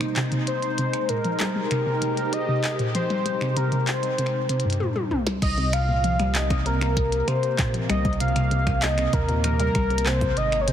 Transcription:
Already playing: C3 A#3 D#4 C5
0.01 C3, finger snap
0.16 C3, clap, closed hi-hat
0.32 C3, closed hi-hat
0.47 G#3 C5, closed hi-hat
0.62 closed hi-hat
0.78 C3, closed hi-hat
0.93 finger snap, closed hi-hat
1.09 A#2 A#4, closed hi-hat
1.24 F3 G4, closed hi-hat
1.40 G3, clap, closed hi-hat
1.56 G3
1.71 C3 A#4, finger snap, closed hi-hat
1.86 C3
2.02 C3, closed hi-hat
2.17 closed hi-hat
2.33 D#5, closed hi-hat
2.48 C3
2.64 finger snap, clap, closed hi-hat
2.79 A#2, closed hi-hat
2.95 F3 C5, closed hi-hat
3.10 G3, closed hi-hat
3.26 G3, closed hi-hat
3.41 C3, finger snap
3.57 C3 A#4, closed hi-hat
3.72 C3, closed hi-hat
3.87 C5, clap, closed hi-hat
4.03 closed hi-hat
4.18 C3, closed hi-hat
4.26 finger snap
4.49 C3, closed hi-hat
4.60 closed hi-hat
4.65 G2
4.70 closed hi-hat
4.73 closed hi-hat
4.80 A#2, high tom
4.96 G3, high tom
5.11 C2, mid tom
5.27 G3, snare
5.42 C2 C3 D#5, finger snap, kick, closed hi-hat, crash
5.58 C3, closed hi-hat
5.73 F5, finger snap, closed hi-hat
5.89 A#2
5.94 A#3
6.04 F3, closed hi-hat
6.19 G3, finger snap, closed hi-hat
6.35 G3 D#5, clap, closed hi-hat
6.50 C3, finger snap, kick, closed hi-hat
6.66 C3 A#4, closed hi-hat
6.81 C3, finger snap, closed hi-hat
6.97 kick, closed hi-hat
7.12 closed hi-hat
7.28 C3 C5, finger snap, closed hi-hat
7.43 closed hi-hat
7.59 A#2, finger snap, kick, clap, closed hi-hat
7.74 F3, closed hi-hat
7.89 C2 G3 D#5, finger snap, closed hi-hat
8.05 G3, kick, closed hi-hat
8.13 closed hi-hat
8.20 C3 F5, closed hi-hat
8.28 closed hi-hat
8.36 C3, finger snap, closed hi-hat
8.51 C3, closed hi-hat
8.67 finger snap, kick, closed hi-hat
8.82 D#5, clap, closed hi-hat
8.98 C3, finger snap, closed hi-hat
9.13 D#2 A#4, kick, closed hi-hat
9.29 A#2, closed hi-hat
9.44 F3 A#4, finger snap, closed hi-hat
9.60 G3 A#4, closed hi-hat
9.75 C2 G3, finger snap, kick, closed hi-hat
9.90 C3, closed hi-hat
9.98 closed hi-hat
10.06 C3 C5, finger snap, clap
10.21 C3, kick, closed hi-hat
10.37 G#1 G#3 D#5, closed hi-hat
10.52 finger snap, closed hi-hat
10.61 C#5
10.68 C3 C5, closed hi-hat

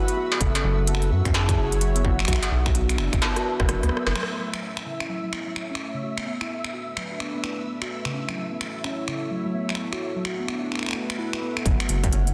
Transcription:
Already playing: A3 D4 F#4 B4 E5 F#5
0.08 B3, closed hi-hat
0.17 F#4
0.32 struck metal
0.41 F#1 C#3 A4, kick, closed hi-hat
0.55 C#4, closed hi-hat, struck metal
0.64 F#1 F#3
0.78 F#3 E4
0.87 B3 A4, closed hi-hat
0.95 finger snap
1.02 F#3, closed hi-hat
1.11 F#2 F#3 F#4
1.18 C#5
1.25 F#2 C#4, finger snap, kick, closed hi-hat
1.34 G#4, snare, closed hi-hat
1.49 C#3, finger snap, kick, closed hi-hat
1.58 F#1 C#4
1.72 F#3, closed hi-hat
1.81 F#3, closed hi-hat
1.96 B3, closed hi-hat
2.05 F#3 F#4, kick
2.19 F#3, finger snap
2.25 F#4, finger snap
2.28 B1, finger snap, kick, closed hi-hat
2.33 finger snap
2.36 D4, finger snap
2.43 closed hi-hat, struck metal
2.51 B1 F#3
2.66 F#4, finger snap, kick
2.75 B3 B4, closed hi-hat
2.89 B3, finger snap, closed hi-hat
2.98 F#1 E4, finger snap
3.13 F#1 B3, finger snap, kick, closed hi-hat
3.22 B3, snare, closed hi-hat
3.36 F#4, cross-stick, closed hi-hat
3.60 F#1 F#3, kick, cross-stick
3.69 F#4, cross-stick, closed hi-hat
3.83 D2 B3, cross-stick, closed hi-hat
3.89 B3, cross-stick
3.97 cross-stick
4.07 F#1 E4, cross-stick, struck metal
4.11 cross-stick
4.16 F#3 A3 E5, finger snap, cross-stick
4.23 E4, cross-stick
4.30 B3
4.39 F#3
4.54 F#3, finger snap
4.62 C#4
4.77 finger snap
4.86 C#3
5.00 C#4 C#5, finger snap
5.09 F#3
5.24 F#3
5.33 finger snap
5.47 F#3
5.56 F#3, finger snap
5.71 C#4
5.75 finger snap
5.94 C#3
6.03 F#4
6.18 B3, finger snap
6.26 B3
6.41 E4, finger snap
6.46 B3 D4 B4
6.64 B3, finger snap
6.73 F#4
6.97 F#3, finger snap
7.11 F#4
7.20 B3, finger snap
7.35 B3
7.44 E4, finger snap
7.58 B3
7.67 B3
7.82 F#4, finger snap
8.02 C#3 E4, finger snap
8.14 C#4
8.22 F#5
8.29 F#3 C#5, finger snap
8.37 F#3
8.52 B3
8.58 F#3 F#4, finger snap
8.75 F#3
8.84 C#4, finger snap
9.08 C#3, finger snap
9.22 C#4
9.31 F#3
9.46 F#3
9.55 B3
9.69 F#3, finger snap
9.75 B3, finger snap
9.93 F#4, finger snap
10.16 F#3 D4
10.25 F#4, finger snap
10.39 B3
10.48 B3, finger snap
10.63 E4 B4
10.72 B3, finger snap
10.75 finger snap
10.79 finger snap
10.83 B3, finger snap
10.86 finger snap
10.89 finger snap
10.91 finger snap
10.93 F#4, finger snap
11.10 finger snap
11.19 E4
11.33 E4, finger snap
11.42 B3
11.57 B3, finger snap
11.65 F#1 F#3, kick, closed hi-hat
11.80 B3, finger snap, closed hi-hat
11.89 F#1 F#3, closed hi-hat, cabasa
12.03 F#3 E4, kick, closed hi-hat
12.12 C#4, closed hi-hat
12.24 C#5, closed hi-hat

